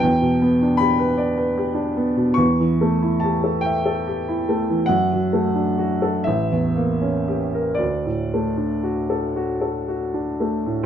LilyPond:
\new Staff \with { instrumentName = "Upright piano" } { \time 12/8 \key d \major \tempo 4. = 47 << { g''4 b''2 cis'''4 a''8 g''8 r4 | fis''4. e''4. d''2~ d''8 r8 | } \\ { e,16 b,16 b16 d'16 g'16 b'16 d''16 b'16 g'16 d'16 b16 b,16 e,16 e16 a16 e'16 g'16 a'16 e''16 a'16 g'16 e'16 a16 e16 | fis,16 fis16 a16 d'16 fis'16 a'16 a,,16 e,16 bes16 cis'16 g'16 bes'16 d,16 a,16 a16 d'16 fis'16 a'16 fis'16 a'16 fis'16 d'16 a16 a,16 | } >> }